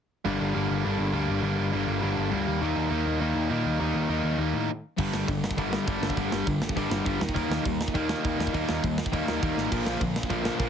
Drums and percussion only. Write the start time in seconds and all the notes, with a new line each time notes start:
4.98 kick, crash
5.13 snare
5.28 kick, open hi-hat
5.44 snare
5.51 kick
5.58 kick, open hi-hat
5.73 snare
5.88 kick, open hi-hat
6.03 snare
6.10 kick
6.17 kick, open hi-hat
6.32 snare
6.47 kick, open hi-hat
6.62 snare
6.69 kick
6.77 kick, open hi-hat
6.91 snare
7.06 kick, open hi-hat
7.21 snare
7.29 kick
7.36 kick, open hi-hat
7.51 snare
7.65 kick, open hi-hat
7.81 snare
7.88 kick
7.95 kick, open hi-hat
8.09 snare
8.24 kick, open hi-hat
8.40 snare
8.47 kick
8.54 kick, open hi-hat
8.69 snare
8.84 kick, open hi-hat
8.98 snare
9.06 kick
9.13 kick, open hi-hat
9.28 snare
9.43 kick, open hi-hat
9.58 snare
9.72 kick, crash
9.86 snare
10.01 kick, open hi-hat
10.16 snare
10.23 kick
10.30 kick, open hi-hat
10.45 snare
10.60 kick, open hi-hat